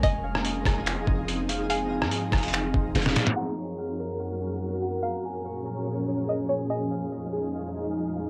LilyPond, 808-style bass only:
\new Staff \with { instrumentName = "808-style bass" } { \clef bass \time 4/4 \key f \phrygian \tempo 4 = 144 f,,4. f,,8. ees,,16 f,,4.~ | f,,8. aes,8. f,,4 f,,8 f,,8 r8 | r1 | r1 |
r1 | }